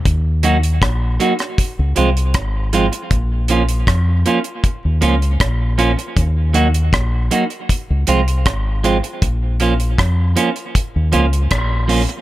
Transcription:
<<
  \new Staff \with { instrumentName = "Clean electric guitar" } { \time 4/4 \key ees \dorian \tempo 4 = 79 r8 <ges bes ees' ges'>8 r8 <ges bes ees' ges'>8 r8 <f aes c' f'>8 r8 <f aes c' f'>8 | r8 <f bes des' f'>8 r8 <f bes des' f'>8 r8 <f bes des' f'>8 r8 <f bes des' f'>8 | r8 <ges bes ees' ges'>8 r8 <ges bes ees' ges'>8 r8 <f aes c' f'>8 r8 <f aes c' f'>8 | r8 <f bes des' f'>8 r8 <f bes des' f'>8 r8 <f bes des' f'>8 r8 <f bes des' f'>8 | }
  \new Staff \with { instrumentName = "Fingered electric bass" } { \clef bass \time 4/4 \key ees \dorian ees,4 bes,,8 r8. des,16 c,8 aes,,8. r16 | bes,,4 f,8 r8. ees,16 des,8 bes,,8. r16 | ees,4 bes,,8 r8. des,16 c,8 aes,,8. r16 | bes,,4 f,8 r8. ees,16 des,8 bes,,8. r16 | }
  \new DrumStaff \with { instrumentName = "Drums" } \drummode { \time 4/4 <hh bd>8 hh16 hh16 <hh bd ss>8 hh16 <hh ss>16 <hh bd>8 hh16 hh16 <hh bd ss>8 hh16 hh16 | <hh bd>8 hh16 hh16 <hh bd ss>8 hh16 hh16 <hh bd>8 hh16 hh16 <hh bd ss>8 hh16 hh16 | <hh bd>8 hh16 hh16 <hh bd ss>8 hh16 hh16 <hh bd>8 hh16 hh16 <hh bd ss>8 hh16 hh16 | <hh bd>8 hh16 hh16 <hh bd ss>8 hh16 hh16 <hh bd>8 hh16 hh16 <hh bd ss>8 hho16 hh16 | }
>>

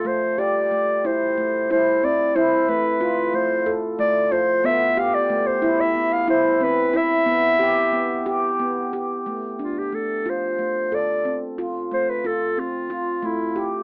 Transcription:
<<
  \new Staff \with { instrumentName = "Clarinet" } { \time 7/8 \key d \dorian \tempo 4 = 91 c''8 d''4 c''4 c''8 d''8 | c''8 b'4 c''8 r8 d''8 c''8 | e''8 f''16 d''8 c''8 e''8 f''16 c''8 b'8 | e''2~ e''8 r4 |
r8 f'16 g'16 a'8 c''4 d''8. r16 | r8 c''16 b'16 a'8 f'4 e'8. r16 | }
  \new Staff \with { instrumentName = "Handpan" } { \time 7/8 \key d \dorian a8 g'8 a8 e'8 a8 e'8 c'8 | e'8 a8 f'8 a8 a'8 a8 f'8 | b8 g'8 a8 e'8 b8 e'8 c'8 | e'8 b8 g'8 b8 g'8 b8 g'8 |
a8 d'8 a8 f'8 a8 a'8 c'8 | f'8 a8 f'8 c'8 f'8 a8 g'8 | }
>>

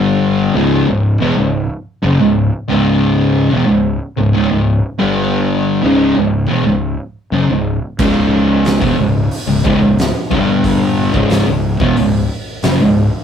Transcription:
<<
  \new Staff \with { instrumentName = "Distorted electric guitar" } { \clef bass \time 4/4 \key cis \minor \tempo 4 = 91 <g, d g>8. <cis, gis, cis>8 <cis, gis,>8 <e, b,>16 <cis, gis,>8 r8 <fis, cis>16 <cis, gis,>8 r16 | <cis, gis, cis>4~ <cis, gis, cis>16 <e, b,>16 <cis, gis,>8 r16 <cis, gis,>16 <cis, gis,>16 <cis, gis,>8 r16 <g, d g>8~ | <g, d g>8. <cis, gis, cis>8 <cis, gis,>8 <e, b,>16 <cis, gis,>8 r8 <fis, cis>16 <cis, gis,>8 r16 | <cis, gis, cis>4~ <cis, gis, cis>16 <e, b,>16 <cis, gis,>8 r16 <cis, gis,>16 <cis, gis,>16 <cis, gis,>8 r16 <g, d g>8~ |
<g, d g>8. <cis, gis, cis>8 <cis, gis,>8 <e, b,>16 <cis, gis,>8 r8 <fis, cis>16 <cis, gis,>8 r16 | }
  \new Staff \with { instrumentName = "Fingered electric bass" } { \clef bass \time 4/4 \key cis \minor g,,8. cis,,8 cis,,8 e,,16 cis,,8 r8 fis,,16 cis,,8 r16 | cis,,4~ cis,,16 e,,16 cis,,8 r16 cis,,16 cis,,16 cis,,8 r16 g,,8~ | g,,8. cis,,8 cis,,8 e,,16 cis,,8 r8 fis,,16 cis,,8 r16 | cis,,4~ cis,,16 e,,16 cis,,8 r16 cis,,16 cis,,16 cis,,8 r16 g,,8~ |
g,,8. cis,,8 cis,,8 e,,16 cis,,8 r8 fis,,16 cis,,8 r16 | }
  \new DrumStaff \with { instrumentName = "Drums" } \drummode { \time 4/4 r4 r4 r4 r4 | r4 r4 r4 r4 | r4 r4 r4 r4 | <cymc bd>4 <hho sn>16 bd8. hho8 bd8 <hho sn>8 bd8 |
<hho bd>8. bd16 <hho sn>8. bd16 hho4 <hho sn>4 | }
>>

